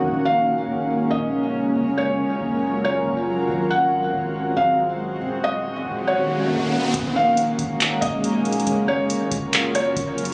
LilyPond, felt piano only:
\new Staff \with { instrumentName = "Felt piano" } { \time 4/4 \key bes \minor \tempo 4 = 139 r8 f''2 ees''4. | r8 des''2 des''4. | r8 ges''2 f''4. | r8 ees''4. des''4 r4 |
r8 f''2 ees''4. | r8 des''2 des''4. | }